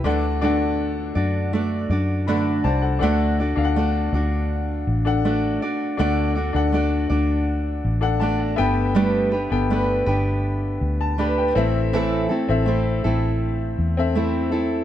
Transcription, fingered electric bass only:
\new Staff \with { instrumentName = "Fingered electric bass" } { \clef bass \time 4/4 \key d \mixolydian \tempo 4 = 81 d,4. fis,4 fis,4 c,8 | d,8. d,8. d,4 a,,4 r8 | d,8. d,8. d,4 a,,4 g,,8~ | g,,8. g,,8. g,,4 d,4 a,,8~ |
a,,8 r16 a,,8. a,,4 e,4. | }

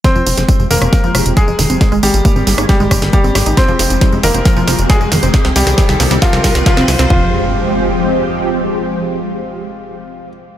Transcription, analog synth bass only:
\new Staff \with { instrumentName = "Analog synth bass" } { \clef bass \time 4/4 \key f \minor \tempo 4 = 136 r16 f,,16 f,,16 f,,16 r16 f,,16 f,,16 f,,16 r16 f,,16 f,,16 f,,16 r16 f,,16 f,,16 f,,16 | r16 aes,,16 aes,,16 aes,,16 r16 aes,,16 aes,,16 aes,,16 r16 aes,,16 aes,,16 aes,,16 r16 aes,,16 aes,,16 aes,,16 | r16 f,,16 f,,16 f,,16 r16 f,,16 f,,16 f,,16 r16 f,,16 f,,16 f,,16 r16 f,,16 f,,16 f,,16 | r16 c,16 c,16 c,16 r16 c,16 c,16 c,16 r16 c,16 c,16 c,16 r16 c,16 c,16 c,16 |
f,,2. r4 | r1 | }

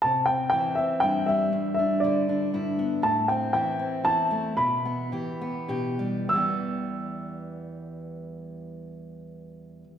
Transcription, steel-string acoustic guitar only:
\new Staff \with { instrumentName = "Steel-string acoustic guitar" } { \time 3/4 \key e \minor \tempo 4 = 112 << { r8 c'8 e'8 c'8 e'8 g8~ | g8 d'8 e'8 d'8 e'8 b8 | r8 c'8 e'8 c'8 e'8 a8 | r8 b8 g'8 b8 g'8 g8 |
<e g b g'>2.~ | <e g b g'>2. | } \\ { c4 e4 g,4 | g,4 d4 g,4 | a,4 e4 e,4 | b,4 e4 b,4 |
e,2.~ | e,2. | } >> }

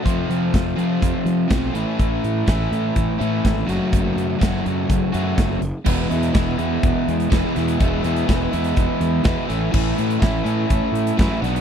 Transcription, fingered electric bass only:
\new Staff \with { instrumentName = "Fingered electric bass" } { \clef bass \time 4/4 \key a \major \tempo 4 = 124 f,8 f8 f,8 f8 f,16 r16 f8 b,,8 a,,16 r16 | a,,8 a,8 a,,8 a,8 a,,16 r16 a,8 gis,,8 fis,,16 r16 | fis,,8 fis,8 fis,,8 fis,8 fis,,16 r16 fis,8 fis,,8 fis,,16 r16 | e,,8 e,8 e,,8 e,8 e,,16 r16 e,8 e,,16 r16 e,8 |
e,,8 e,8 e,,8 e,8 e,,16 r16 e,8 e,16 r16 a,,8 | a,,8 a,8 a,,8 a,8 a,,16 r16 a,8 fis,16 r16 b,,8 | }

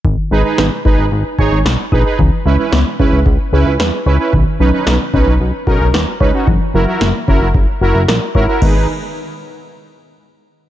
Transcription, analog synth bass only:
\new Staff \with { instrumentName = "Analog synth bass" } { \clef bass \time 4/4 \key gis \minor \tempo 4 = 112 gis,,16 r16 gis,,16 r16 gis,,16 r16 gis,,16 gis,,16 gis,,16 r16 gis,,16 gis,,16 b,,16 r16 ais,,16 r16 | cis,16 r16 cis,16 r16 cis,16 r16 cis,16 cis,16 cis,16 r16 cis,16 cis,16 e,16 r16 cis,16 r16 | b,,16 r16 b,,16 r16 b,,16 r16 b,,16 b,,16 b,,16 r16 b,,16 b,,16 dis,16 r16 cis,16 r16 | fis,,16 r16 fis,,16 r16 fis,,16 r16 fis,,16 fis,,16 fis,,16 r16 fis,,16 fis,,16 ais,,16 r16 gis,,16 r16 |
gis,,8 r2. r8 | }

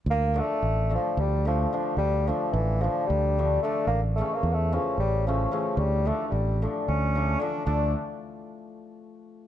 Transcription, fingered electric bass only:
\new Staff \with { instrumentName = "Fingered electric bass" } { \clef bass \time 7/8 \key d \minor \tempo 4 = 110 d,4 a,,4 d,4. | d,4 a,,4 d,4. | a,,4 e,4 a,,4. | d,4 a,,4 d,4. |
d,8 r2. | }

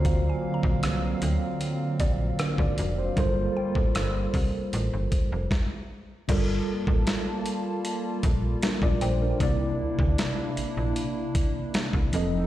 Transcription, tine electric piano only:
\new Staff \with { instrumentName = "Tine electric piano" } { \time 4/4 \key g \minor \tempo 4 = 77 << { r2. <d' ais'>16 <fis' d''>8 c''16~ | c''16 r2. r8. | r2. <d' bes'>16 <f' d''>16 c''16 <d' bes'>16~ | <d' bes'>16 r2. r8. | } \\ { <d ais eis' fis' c''>2.~ <d ais eis' fis' c''>8 r8 | <g f' a' bes' c''>2. r4 | <g f' a' bes'>1 | <c bes e' d''>2.~ <c bes e' d''>8 <f c' a' ees''>8 | } >> }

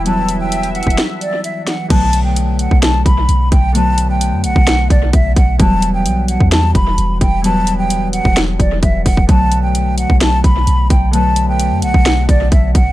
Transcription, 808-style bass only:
\new Staff \with { instrumentName = "808-style bass" } { \clef bass \time 4/4 \key b \minor \tempo 4 = 130 e,,4.~ e,,16 e,,16 r2 | b,,4.~ b,,16 b,,8. b,,8 b,,8 b,,8~ | b,,4~ b,,16 fis,16 b,,16 b,,8. b,,8 b,,8 b,,8 | e,,4 b,,8. e,8. e,,8 e,,8 e,,8~ |
e,,4.~ e,,16 e,,8. e,,8 e,,8 e,,8 | b,,4.~ b,,16 b,,8. b,,8 b,,8 b,,8~ | b,,4~ b,,16 fis,16 b,,16 b,,8. b,,8 b,,8 b,,8 | }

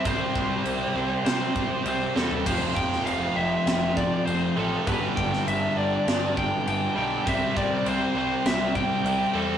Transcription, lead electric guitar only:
\new Staff \with { instrumentName = "Lead electric guitar" } { \time 4/4 \key c \major \tempo 4 = 100 c''2 c''4 c''8 a'8 | c''8 g''8 f''8 e''4 d''8 c''8 a'8 | b'8 g''8 e''8 d''4 g''8 g''8 g''8 | e''8 d''8 c''8 c''8 e''8 g''4 a'8 | }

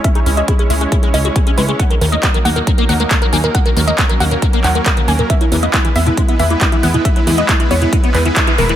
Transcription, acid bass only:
\new Staff \with { instrumentName = "Acid bass" } { \clef bass \time 4/4 \key dis \phrygian \tempo 4 = 137 cis'16 dis'16 cis'16 fis'16 e'16 cis'16 gis16 gis16 e'16 gis16 cis'16 fis'16 cis16 cis'16 gis16 gis16 | dis16 dis16 dis16 gis16 fis16 dis16 ais16 ais,16 fis16 ais16 dis16 gis16 dis,16 dis16 ais16 ais,16 | dis16 dis16 dis16 gis16 fis16 dis16 ais16 ais,16 fis16 ais16 dis16 gis16 dis,16 dis16 ais16 ais,16 | e16 fis16 e16 ais16 gis16 e16 b16 b,16 gis16 b16 e16 ais16 e,16 e16 b16 b,16 |
e16 fis16 e16 ais16 gis16 e16 b16 b,16 gis16 b16 e16 dis16 e'16 e16 e16 e16 | }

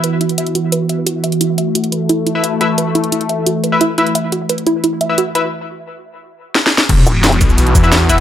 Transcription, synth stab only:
\new Staff \with { instrumentName = "Synth stab" } { \time 4/4 \key c \lydian \tempo 4 = 175 r1 | r2 r8. <e' b' e''>16 r8 <e' b' e''>16 r16 | r2 r8. <e' b' e''>16 r8 <e' b' e''>16 r16 | r2 r8. <e' b' e''>16 r8 <e' b' e''>16 r16 |
r1 | r2 r8. <e' b' e''>16 r8 <e' b' e''>16 r16 | }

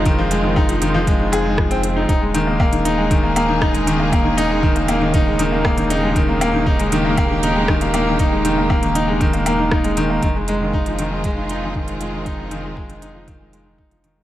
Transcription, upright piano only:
\new Staff \with { instrumentName = "Upright piano" } { \clef bass \time 4/4 \key ees \mixolydian \tempo 4 = 118 ees16 f16 aes16 ees16 ees'16 f16 ees16 f16 aes16 ees16 aes'16 aes16 f16 c'16 c'16 ees'16 | ees'16 aes16 ees16 bes16 bes16 ees16 ees'16 aes16 ees16 bes16 bes16 ees16 ees'16 aes16 ees16 bes16 | bes16 ees16 ees'16 aes16 ees16 bes16 bes16 ees16 ees'16 aes16 ees16 bes16 bes16 ees16 ees'16 aes16 | ees16 bes16 bes16 ees16 ees'16 aes16 ees16 bes16 bes16 ees16 ees'16 aes16 ees16 bes16 bes16 ees16 |
ees'16 aes16 ees16 bes16 bes16 ees16 ees'16 aes16 ees16 bes16 bes16 ees16 ees'16 aes16 ees16 bes16 | ees16 aes16 aes16 ees16 ees'16 f16 ees16 aes16 aes16 ees16 ees'16 f16 ees16 aes16 aes16 ees16 | ees'16 f16 ees16 aes16 aes16 ees16 ees'16 f16 ees16 aes16 aes16 ees16 ees'16 f16 ees16 aes16 | }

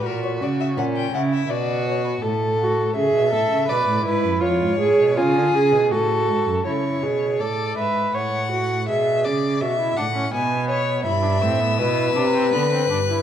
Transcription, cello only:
\new Staff \with { instrumentName = "Cello" } { \clef bass \time 3/4 \key b \minor \tempo 4 = 82 ais,8 cis8 ais,8 cis8 b,4 | a,4 cis16 b,16 a,16 cis16 b,16 a,16 gis,16 fis,16 | eis,16 gis,16 a,16 b,16 cis16 d16 cis16 b,16 a,8 gis,16 fis,16 | cis8 b,8 a,8 gis,8 a,4 |
b,8 cis8 b,8 a,8 b,4 | \key e \minor g,8 a,8 b,8 c8 d8 g,8 | }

